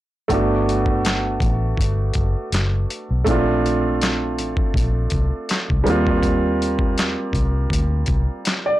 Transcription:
0.28 G1 A3 B3 D4, kick, closed hi-hat
0.34 F#4
0.69 closed hi-hat
0.86 kick
1.05 snare, clap, closed hi-hat
1.40 A1, kick, closed hi-hat
1.77 G1, kick, closed hi-hat
2.14 F#1, kick, closed hi-hat
2.52 F#1, snare, clap, closed hi-hat
2.90 closed hi-hat
3.11 B1
3.24 A#1 A3 C4 D4, kick, closed hi-hat
3.30 F4
3.66 closed hi-hat
4.02 snare, clap, closed hi-hat
4.39 A1, closed hi-hat
4.57 kick
4.74 A#1, kick, closed hi-hat
5.10 C2, kick, closed hi-hat
5.49 snare, clap, closed hi-hat
5.70 C2, kick
5.84 D#2 G3 A#3, closed hi-hat
5.88 C4 F4
6.07 kick
6.23 kick, closed hi-hat
6.62 closed hi-hat
6.79 kick
6.98 snare, clap, closed hi-hat
7.33 C2, kick, closed hi-hat
7.70 D2, kick, closed hi-hat
8.06 C2, kick, closed hi-hat
8.45 snare, clap, closed hi-hat
8.66 D5

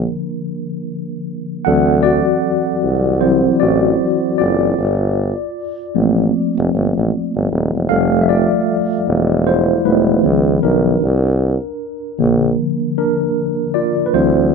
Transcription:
Already playing: D3 F3 A#3 D4 A#4
1.65 D2 E3 F#3 C4 A4 F#5
2.03 F#4 D5
2.84 C2
3.21 E3 F#3 C4 E4 C5
3.60 A1 F#4 D5
4.38 F#1 F4 D5
4.78 G1
5.95 A1 F3 A3 A#3 C4
6.58 F1
6.74 G1
6.97 A1
7.35 G1
7.52 D#1
7.74 E1
7.89 F1 F3 G3 A3 A4 F5
8.22 E5
8.29 F4 D5
9.08 E1
9.47 E4 C5
9.84 E1 E3 G3 A3 D#4 B4
10.23 C#2 D#3 F3 B3
10.63 B1 D4 A#4
11.03 C2
12.19 A#1 D3 F3 A#3
12.98 D4 A#4
13.74 F4 D5
14.06 B4
14.13 D2 E3 F#3 C4 E4 C5

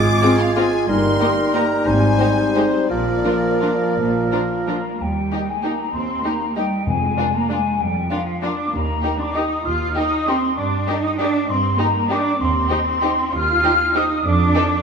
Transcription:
Already playing: G#1 G#2 G#3 F4 G#4 D6
0.22 C4 F4 G#4
0.40 F5
0.56 C4 F4 G#4 G#5
0.88 G1 G2 G3 A#3 D#4 A#4 C6
1.20 A#3 D#4 G4 A#4
1.54 A#3 D#4 G4 A#4 A#5
1.86 G#1 G#2 G3 C4 C5 G#5
2.20 G#3 D#4 G4 C5
2.55 G3 G#3 C4 D#4 G4 C5
2.90 A#1 A#2 F3 A#3 F4 A#4 D5
3.25 F3 D4 F4 A#4
3.62 F3 D4 F4 A#4
3.97 A#1 A#2
4.32 F3 D4 F4 A#4
4.67 F3 A#3 D4 F4 A#4 A#5
5.01 D#2 G3 G5
5.32 D#4 G4 A#4
5.48 G#3 G#5
5.64 A#3 D#4 G4 A#4 A#5
5.94 D#2 C4 C6
6.24 A#3 D#4 G4 A#4 A#5
6.57 G3 D#4 G4 A#4 G5
6.87 F2 G#3 G#5
7.17 D4 F4 A#4
7.34 A#3 A#5
7.49 G#3 D4 F4 A#4 G#5
7.80 F2 G3 G5
8.11 F3 D4 F4 A#4 F5
8.43 D4 F4 A#4 D6
8.73 D#2 A#3 A#5
9.03 D#4 G4 A#4
9.20 D4 D6
9.35 D#4 G4 A#4 D#6
9.65 D#2 F4 F6
9.96 D#4 G4 A#4 D#6
10.27 C4 D#4 G4 A#4 C6
10.57 G2 D4 D6
10.88 D#4 G4 A#4
11.03 D#4 D#6
11.18 D4 D#4 G4 A#4 D6
11.49 G2 C4 C6
11.78 A#3 D#4 G4 A#4 A#5
12.10 D4 D#4 G4 A#4 D6
12.40 D#2 C4 C6
12.70 D#4 G4 C5
13.02 D#4 G4 C5
13.34 D#2 F4 F6
13.64 D#4 G4 C5
13.94 D#4 G4 C5 D#6
14.25 F2 D4 D6
14.55 D#4 A4 C5

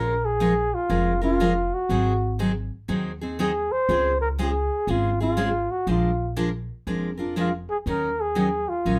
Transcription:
Already playing: A#1 F3 G#3 C#4 F4 A#4
0.25 G#4
0.40 F3 G#3 C#4 F4 A#4
0.74 F4
0.89 F1 F3 G#3 C#4 F4 A#4
1.22 C#4 F4 A#4
1.40 F3 G#3 C#4 F4 A#4
1.74 F#4
1.89 G#1 D#3 F#3 C4 D#4 G#4
2.39 D#3 F#3 C4 D#4 G#4
2.88 D#2 D#3 F#3 C4 D#4 G#4
3.21 C4 D#4 G#4
3.39 D#3 F#3 C4 D#4 G#4
3.72 C5
3.89 C#2 C#3 G#3 C4 F4 G#4
4.21 A#4
4.38 C#3 G#3 C4 F4 G#4
4.87 G#1 C#3 G#3 C4 F4 G#4
5.20 C4 F4 G#4
5.37 C#3 G#3 C4 F4 G#4
5.71 F#4
5.87 A#1 F3 G#3 D4 F4 A#4
6.36 F3 G#3 D4 F4 A#4
6.87 F1 F3 G#3 D4 F4 A#4
7.18 D4 F4 A#4
7.36 F3 G#3 D4 F4 A#4
7.70 G#4
7.86 D#2 D#3 F#3 C#4 D#4 A#4
8.21 G#4
8.35 D#3 F#3 C#4 D#4 A#4
8.69 F4
8.85 A#1 D#3 F#3 C#4 D#4 A#4

